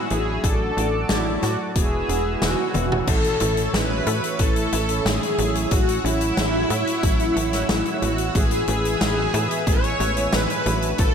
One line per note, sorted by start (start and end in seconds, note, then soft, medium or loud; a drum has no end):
0.00 0.41 G#4 medium
0.00 0.40 E5 medium
0.00 0.41 B5 medium
0.00 0.41 E6 medium
0.10 0.40 A1 medium
0.10 0.73 A2 medium
0.10 0.73 F#3 medium
0.10 0.73 A3 medium
0.10 0.73 D4 medium
0.10 0.73 F#4 loud
0.10 0.45 G#4 loud
0.10 closed hi-hat medium
0.44 0.72 A1 loud
0.44 3.05 F#4 medium
0.44 1.12 A4 loud
0.44 1.74 D5 medium
0.44 1.74 A5 medium
0.44 1.74 D6 medium
0.44 kick loud
0.44 closed hi-hat medium
0.77 1.06 A1 medium
0.77 1.22 A2 medium
0.77 1.22 F#3 medium
0.77 1.22 A3 medium
0.77 1.22 D4 medium
0.77 1.22 F#4 medium
0.77 closed hi-hat medium
1.09 1.39 A1 medium
1.09 1.44 E4 medium
1.09 snare loud
1.09 closed hi-hat medium
1.26 1.72 A2 medium
1.26 1.72 F#3 medium
1.26 1.72 A3 medium
1.26 1.72 D4 medium
1.26 1.72 A4 medium
1.42 1.57 A2 medium
1.42 1.57 F#4 medium
1.42 snare soft
1.42 closed hi-hat medium
1.75 2.04 E1 medium
1.75 2.21 G#3 medium
1.75 2.21 B3 medium
1.75 2.21 E4 medium
1.75 2.21 F#4 loud
1.75 2.71 G#4 loud
1.75 3.06 B4 medium
1.75 3.06 G#5 medium
1.75 3.06 E6 medium
1.75 kick loud
1.75 closed hi-hat medium
2.09 2.37 E1 medium
2.09 closed hi-hat medium
2.25 2.71 G#3 medium
2.25 2.71 B3 medium
2.25 2.71 E4 medium
2.25 2.71 F#4 loud
2.42 2.56 E1 loud
2.42 3.10 F#4 medium
2.42 snare loud
2.42 closed hi-hat loud
2.74 3.03 E1 medium
2.74 3.37 A2 medium
2.74 3.37 E3 medium
2.74 3.37 A3 medium
2.74 3.37 C#4 medium
2.74 3.37 E4 loud
2.74 closed hi-hat medium
2.74 high tom medium
2.92 mid tom medium
3.07 3.36 A1 loud
3.07 3.25 A3 medium
3.07 3.70 A4 loud
3.07 5.69 C#5 medium
3.07 5.69 E5 medium
3.07 10.95 E6 medium
3.07 kick loud
3.07 closed hi-hat medium
3.07 crash loud
3.24 closed hi-hat medium
3.40 3.69 A1 medium
3.40 3.86 A2 medium
3.40 3.86 E3 medium
3.40 3.86 A3 medium
3.40 3.86 C#4 medium
3.40 3.86 E4 loud
3.40 3.69 E4 medium
3.40 closed hi-hat medium
3.57 closed hi-hat medium
3.74 4.02 A1 medium
3.74 3.91 A3 medium
3.74 4.42 B4 loud
3.74 snare loud
3.74 closed hi-hat medium
3.90 4.36 A2 medium
3.90 4.36 E3 medium
3.90 4.36 A3 medium
3.90 4.36 C#4 medium
3.90 4.36 F#4 loud
4.07 4.21 A2 medium
4.07 4.35 A4 medium
4.07 closed hi-hat medium
4.24 closed hi-hat medium
4.39 4.68 A1 medium
4.39 4.85 A2 medium
4.39 4.85 E3 medium
4.39 4.85 A3 medium
4.39 4.68 A3 medium
4.39 4.85 C#4 medium
4.39 4.85 E4 loud
4.39 5.08 A4 loud
4.39 kick loud
4.39 closed hi-hat medium
4.56 closed hi-hat medium
4.73 5.01 A1 medium
4.73 5.01 E4 medium
4.73 closed hi-hat medium
4.89 5.34 A2 medium
4.89 5.34 E3 medium
4.89 5.34 A3 medium
4.89 5.34 C#4 medium
4.89 5.34 E4 loud
4.89 closed hi-hat medium
5.05 5.20 A1 loud
5.05 5.37 A3 loud
5.05 5.73 G#4 loud
5.05 snare loud
5.05 closed hi-hat medium
5.23 closed hi-hat medium
5.38 5.67 A1 medium
5.38 6.00 A2 medium
5.38 6.00 F#3 medium
5.38 6.00 A3 medium
5.38 5.70 A3 medium
5.38 6.00 C#4 medium
5.38 6.00 E4 loud
5.38 closed hi-hat medium
5.55 closed hi-hat medium
5.71 6.00 A1 loud
5.71 5.88 F#3 medium
5.71 6.05 F#4 loud
5.71 8.33 C#5 medium
5.71 8.33 F#5 medium
5.71 kick loud
5.71 closed hi-hat medium
5.89 closed hi-hat medium
6.04 6.33 A1 medium
6.04 6.50 A2 medium
6.04 6.50 F#3 medium
6.04 6.50 A3 medium
6.04 6.50 C#4 medium
6.04 6.33 C#4 medium
6.04 6.50 E4 loud
6.04 8.08 E4 loud
6.04 closed hi-hat medium
6.21 closed hi-hat medium
6.37 6.66 A1 medium
6.37 6.54 F#3 medium
6.37 snare loud
6.37 closed hi-hat medium
6.54 6.99 A2 medium
6.54 6.99 F#3 medium
6.54 6.99 A3 medium
6.54 6.99 C#4 medium
6.54 6.99 F#4 medium
6.70 6.85 A2 medium
6.70 6.99 E4 medium
6.70 closed hi-hat medium
6.87 closed hi-hat medium
7.03 7.32 A1 medium
7.03 7.49 A2 loud
7.03 7.49 F#3 medium
7.03 7.32 F#3 medium
7.03 7.49 A3 medium
7.03 7.49 C#4 medium
7.03 7.49 E4 loud
7.03 kick loud
7.03 closed hi-hat medium
7.20 closed hi-hat medium
7.36 7.65 A1 medium
7.36 7.64 C#4 medium
7.36 closed hi-hat medium
7.53 7.98 A2 medium
7.53 7.98 F#3 medium
7.53 7.98 A3 medium
7.53 7.98 C#4 medium
7.53 7.98 E4 loud
7.53 snare soft
7.53 closed hi-hat medium
7.69 7.83 A1 loud
7.69 8.01 F#3 loud
7.69 snare loud
7.69 closed hi-hat loud
7.85 closed hi-hat medium
8.02 8.31 A1 loud
8.02 8.64 A2 medium
8.02 8.64 E3 medium
8.02 8.64 G#3 medium
8.02 8.64 B3 medium
8.02 8.64 E4 loud
8.02 8.33 E4 medium
8.02 8.33 F#4 loud
8.02 closed hi-hat medium
8.18 closed hi-hat medium
8.35 8.64 A1 loud
8.35 8.52 G#3 medium
8.35 8.67 G#4 loud
8.35 10.96 B4 medium
8.35 10.96 E5 medium
8.35 10.96 G#5 medium
8.35 kick loud
8.35 closed hi-hat medium
8.51 closed hi-hat medium
8.68 8.97 A1 medium
8.68 9.14 A2 medium
8.68 9.14 E3 medium
8.68 9.14 G#3 medium
8.68 9.14 B3 medium
8.68 9.14 E4 loud
8.68 8.96 E4 medium
8.68 9.63 G#4 loud
8.68 closed hi-hat medium
8.85 closed hi-hat medium
9.01 9.30 A1 medium
9.01 9.18 G#3 medium
9.01 snare loud
9.01 closed hi-hat medium
9.17 9.63 A2 medium
9.17 9.63 E3 medium
9.17 9.63 G#3 medium
9.17 9.63 B3 medium
9.17 9.63 F#4 loud
9.34 9.48 A2 medium
9.34 9.62 G#4 medium
9.34 closed hi-hat medium
9.51 closed hi-hat medium
9.67 9.96 A1 medium
9.67 10.12 A2 loud
9.67 10.12 E3 medium
9.67 10.12 G#3 medium
9.67 9.95 G#3 medium
9.67 10.12 B3 medium
9.67 10.12 E4 loud
9.67 10.35 C#5 loud
9.67 kick loud
9.67 closed hi-hat medium
9.84 closed hi-hat medium
10.00 10.29 A1 medium
10.00 10.28 E4 medium
10.00 closed hi-hat medium
10.16 10.62 A2 medium
10.16 10.62 E3 medium
10.16 10.62 G#3 medium
10.16 10.62 B3 medium
10.16 10.62 E4 loud
10.16 closed hi-hat medium
10.33 10.47 A1 loud
10.33 10.64 G#3 loud
10.33 11.01 B4 loud
10.33 snare loud
10.33 closed hi-hat medium
10.50 closed hi-hat medium
10.66 10.95 A1 medium
10.66 11.14 A2 medium
10.66 11.14 F#3 medium
10.66 11.14 A3 medium
10.66 11.14 D4 medium
10.66 11.14 F#4 loud
10.66 10.97 G#4 medium
10.66 closed hi-hat medium
10.82 closed hi-hat medium
10.98 11.14 A1 loud
10.98 11.14 F#3 medium
10.98 11.14 A4 medium
10.98 11.13 A4 loud
10.98 11.14 F#5 medium
10.98 11.14 D6 medium
10.98 kick loud
10.98 closed hi-hat medium